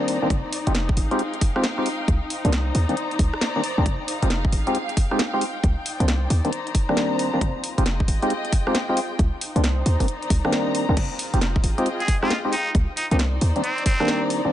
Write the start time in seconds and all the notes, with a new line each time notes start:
Already playing: D#3 G3 A#3 C4 D4 D#4 C5 D5 A#5
0.08 open hi-hat
0.22 D#3 G3 A#3 C4 D4
0.30 F1, kick, closed hi-hat
0.53 open hi-hat
0.62 G#4
0.67 F1 G#3 C4 D#4 F4 G4, closed hi-hat
0.75 snare, closed hi-hat
0.89 kick
0.97 G#1 F5, open hi-hat
1.11 G#3 C4 D#4 F4 G4 G5, closed hi-hat
1.19 closed hi-hat
1.34 closed hi-hat
1.41 kick, open hi-hat
1.56 G#3 C4 D#4 F4 G4, cross-stick
1.64 snare, closed hi-hat
1.78 G#3 C4 D#4 F4 G4
1.86 open hi-hat
2.08 C2, kick, closed hi-hat
2.30 C5, open hi-hat
2.45 C2 D#3 G3 A#3 C4 D4, closed hi-hat
2.50 A#5, snare, closed hi-hat
2.68 D5
2.75 D#2, open hi-hat
2.89 D#3 G3 A#3 C4 D4, closed hi-hat
2.97 closed hi-hat
3.11 closed hi-hat
3.19 C2, kick, open hi-hat
3.34 cross-stick
3.41 snare, closed hi-hat
3.56 D#3 G3 A#3 C4 D4
3.64 open hi-hat
3.78 C2 D#3 G3 A#3 C4 D4
3.86 F1, kick, closed hi-hat
3.93 G#4
4.07 F5, open hi-hat
4.22 F1 G#3 C4 D#4 F4 G4, closed hi-hat
4.30 snare, closed hi-hat
4.45 kick
4.52 G#1, open hi-hat
4.62 G5
4.67 G#3 C4 D#4 F4 G4, closed hi-hat
4.75 closed hi-hat
4.89 closed hi-hat
4.97 kick, open hi-hat
5.11 G#3 C4 D#4 F4 G4, cross-stick
5.19 snare, closed hi-hat
5.33 G#3 C4 D#4 F4 G4
5.41 open hi-hat
5.64 C2, kick, closed hi-hat
5.81 D5
5.86 open hi-hat
5.94 C5
6.00 C2 D#3 G3 A#3 C4 D4, closed hi-hat
6.08 snare, closed hi-hat
6.30 D#2, open hi-hat
6.45 D#3 G3 A#3 C4 D4 A#5, closed hi-hat
6.53 closed hi-hat
6.67 closed hi-hat
6.75 kick, open hi-hat
6.89 D#3 G3 A#3 C4 D4, cross-stick
6.97 snare, closed hi-hat
7.19 open hi-hat
7.33 D#3 G3 A#3 C4 D4
7.41 F1 F4, kick, closed hi-hat
7.64 open hi-hat
7.76 F1 G#3 C4 D#4 F4 G4 G#4 D#5 G5, closed hi-hat
7.86 snare, closed hi-hat
8.00 kick
8.08 G#1, open hi-hat
8.22 G#3 C4 D#4 F4 G4, closed hi-hat
8.30 closed hi-hat
8.45 closed hi-hat
8.52 kick, open hi-hat
8.67 G#3 C4 D#4 F4 G4, cross-stick
8.75 snare, closed hi-hat
8.89 G#3 C4 D#4 F4 G4
8.97 open hi-hat
9.19 C2 D#4, kick, closed hi-hat
9.41 C5, open hi-hat
9.56 C2 D#3 G3 A#3 C4 D4, closed hi-hat
9.64 snare, closed hi-hat
9.78 D5
9.86 D#2 A#5, open hi-hat
10.00 D#3 G3 A#3 C4 D4, kick, open hi-hat
10.08 closed hi-hat
10.22 closed hi-hat
10.30 C2, kick, open hi-hat
10.45 D#3 G3 A#3 C4 D4, cross-stick
10.53 snare, closed hi-hat
10.75 open hi-hat
10.89 C2 D#3 G3 A#3 C4 D4
10.97 F1 F4, kick, closed hi-hat, crash
11.16 G#4, open hi-hat
11.34 F1 G#3 C4 D#4 F4 G4 G5, closed hi-hat
11.41 snare, closed hi-hat
11.53 D#5, kick
11.64 G#1, open hi-hat
11.78 G#3 C4 D#4 F4 G4, closed hi-hat
11.86 closed hi-hat
12.00 G#4, closed hi-hat
12.08 kick, open hi-hat
12.22 G#3 C4 D#4 F4 G4, cross-stick
12.30 snare, closed hi-hat
12.45 G#3 C4 D#4 F4 G4
12.53 D#4, open hi-hat
12.75 C2 D#4, kick, closed hi-hat
12.93 D#4 C5, open hi-hat
13.11 C2 D#3 G3 A#3 C4 D4 D#4 D5, closed hi-hat
13.19 snare, closed hi-hat
13.34 A#5
13.41 D#2, open hi-hat
13.56 D#3 G3 A#3 C4 D4, closed hi-hat
13.64 C4, closed hi-hat
13.78 closed hi-hat
13.86 C4, kick, open hi-hat
14.00 D#3 G3 A#3 C4 D4, cross-stick
14.08 snare, closed hi-hat
14.30 open hi-hat
14.45 D#3 G3 A#3 C4 D4